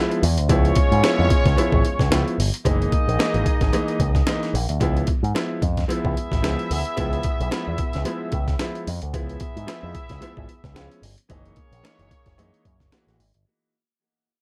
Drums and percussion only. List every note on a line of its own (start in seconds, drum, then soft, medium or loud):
0.11 closed hi-hat soft
0.23 open hi-hat loud
0.38 closed hi-hat medium
0.49 kick loud
0.49 closed hi-hat medium
0.49 cowbell medium
0.65 closed hi-hat soft
0.75 kick loud
0.75 closed hi-hat medium
0.92 closed hi-hat medium
1.03 snare loud
1.03 closed hi-hat loud
1.03 cowbell medium
1.30 kick loud
1.30 closed hi-hat medium
1.46 kick loud
1.46 snare soft
1.46 closed hi-hat medium
1.57 closed hi-hat medium
1.57 cowbell medium
1.72 kick loud
1.85 closed hi-hat medium
1.99 kick medium
1.99 snare soft
1.99 closed hi-hat soft
2.12 snare loud
2.12 closed hi-hat loud
2.12 cowbell medium
2.28 closed hi-hat soft
2.40 open hi-hat medium
2.54 closed hi-hat medium
2.65 kick loud
2.65 closed hi-hat medium
2.65 cowbell medium
2.82 closed hi-hat soft
2.92 kick loud
2.92 closed hi-hat medium
3.09 closed hi-hat soft
3.19 snare loud
3.19 closed hi-hat medium
3.19 cowbell medium
3.34 closed hi-hat soft
3.46 kick loud
3.46 closed hi-hat medium
3.61 kick loud
3.61 snare soft
3.61 closed hi-hat medium
3.73 closed hi-hat medium
3.73 cowbell medium
3.88 closed hi-hat soft
4.00 kick medium
4.00 closed hi-hat medium
4.15 kick medium
4.15 snare soft
4.15 closed hi-hat medium
4.27 snare loud
4.27 closed hi-hat loud
4.27 cowbell medium
4.43 snare soft
4.43 closed hi-hat soft
4.55 open hi-hat medium
4.69 closed hi-hat medium
4.80 kick loud
4.80 closed hi-hat medium
4.80 cowbell medium
4.97 closed hi-hat soft
5.07 kick loud
5.07 closed hi-hat medium
5.24 closed hi-hat soft
5.35 snare loud
5.35 closed hi-hat medium
5.35 cowbell medium
5.62 kick medium
5.62 closed hi-hat medium
5.77 kick medium
5.77 snare soft
5.77 closed hi-hat medium
5.89 closed hi-hat loud
5.89 cowbell medium
6.05 kick medium
6.17 closed hi-hat medium
6.32 kick medium
6.32 snare soft
6.32 closed hi-hat medium
6.44 snare loud
6.44 closed hi-hat medium
6.44 cowbell medium
6.59 closed hi-hat soft
6.71 open hi-hat medium
6.85 closed hi-hat medium
6.97 kick loud
6.97 closed hi-hat medium
6.97 cowbell medium
7.13 closed hi-hat soft
7.23 kick loud
7.23 closed hi-hat medium
7.41 closed hi-hat medium
7.51 snare loud
7.51 closed hi-hat medium
7.51 cowbell medium
7.78 kick loud
7.78 closed hi-hat medium
7.93 snare soft
7.93 closed hi-hat medium
8.05 closed hi-hat medium
8.05 cowbell medium
8.32 kick medium
8.32 closed hi-hat medium
8.48 kick medium
8.48 snare soft
8.48 closed hi-hat soft
8.59 snare loud
8.59 closed hi-hat loud
8.59 cowbell medium
8.75 closed hi-hat soft
8.87 open hi-hat medium
9.02 closed hi-hat medium
9.14 kick loud
9.14 closed hi-hat medium
9.14 cowbell medium
9.29 closed hi-hat soft
9.40 kick loud
9.40 closed hi-hat medium
9.57 closed hi-hat medium
9.68 snare loud
9.68 closed hi-hat loud
9.68 cowbell medium
9.95 kick loud
9.95 closed hi-hat medium
10.09 kick medium
10.09 snare soft
10.09 closed hi-hat medium
10.22 closed hi-hat medium
10.22 cowbell medium
10.37 kick medium
10.49 closed hi-hat medium
10.64 kick medium
10.64 snare soft
10.64 closed hi-hat soft
10.76 snare loud
10.76 closed hi-hat loud
10.76 cowbell medium
10.91 closed hi-hat soft
11.03 open hi-hat medium
11.18 closed hi-hat medium
11.30 kick loud
11.30 closed hi-hat medium
11.30 cowbell medium
11.45 closed hi-hat soft
11.56 kick medium
11.56 closed hi-hat medium
11.73 closed hi-hat medium
11.84 snare loud
11.84 closed hi-hat medium
11.84 cowbell medium
11.99 closed hi-hat soft
12.11 kick loud
12.11 closed hi-hat medium
12.26 kick medium
12.26 snare soft
12.26 closed hi-hat medium
12.38 closed hi-hat medium
12.38 cowbell medium
12.54 closed hi-hat soft
12.65 kick medium
12.65 closed hi-hat medium
12.80 kick medium
12.80 snare soft
12.80 closed hi-hat soft
12.92 snare loud
12.92 closed hi-hat loud
12.92 cowbell medium
13.08 snare soft
13.08 closed hi-hat soft
13.20 open hi-hat medium
13.34 closed hi-hat medium